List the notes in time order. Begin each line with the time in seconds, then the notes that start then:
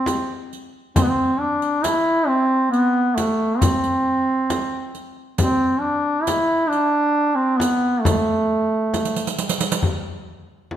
Already playing: C4
0.06 riq, frame drum
0.53 riq
0.96 C4, riq, frame drum
1.03 B3
1.10 C4
1.40 D4
1.62 riq
1.84 E4, riq, frame drum
2.27 C4
2.71 B3, riq
3.15 A3, riq, frame drum
3.59 C4, riq, frame drum
3.84 riq
4.50 riq, frame drum
4.95 riq
5.38 C4, riq, frame drum
5.80 D4
6.23 E4
6.27 riq, frame drum
6.68 D4
6.72 riq
7.35 C4
7.57 B3, frame drum
7.61 riq
8.01 A3, frame drum
8.06 riq
8.94 riq, frame drum
9.05 riq
9.16 riq
9.27 riq
9.38 riq
9.49 riq
9.61 riq
9.72 riq
9.83 frame drum
10.71 frame drum